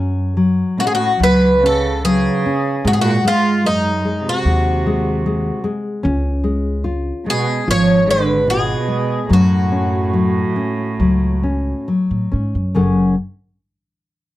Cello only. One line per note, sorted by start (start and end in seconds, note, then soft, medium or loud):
0.78 0.84 A2 medium
0.85 0.90 B2 medium
0.91 1.17 A2 medium
1.19 1.58 F#3 medium
1.61 2.00 C#3 medium
2.04 2.81 C#3 medium
2.86 2.91 C3 medium
2.92 2.98 C3 medium
3.00 3.23 A#2 medium
3.27 3.63 G#2 medium
3.65 4.21 F#2 medium
4.27 5.63 C3 medium
7.26 7.64 B2 medium
7.68 8.06 F3 medium
8.07 8.45 D3 medium
8.48 9.26 B2 medium
9.31 11.85 A2 medium